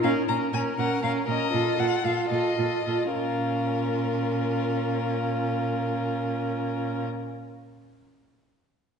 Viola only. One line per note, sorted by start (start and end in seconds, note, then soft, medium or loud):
0.04 0.28 C#4 soft
0.29 0.53 C#4 soft
0.54 0.78 C#4 soft
0.79 1.02 C#4 soft
1.03 1.27 C#4 soft
1.28 1.52 C#4 soft
1.53 1.78 F4 soft
1.79 2.04 F4 soft
2.06 2.31 F4 soft
2.31 2.58 F4 soft
2.59 2.86 F4 soft
2.86 3.13 F4 soft
3.14 7.04 C#4 soft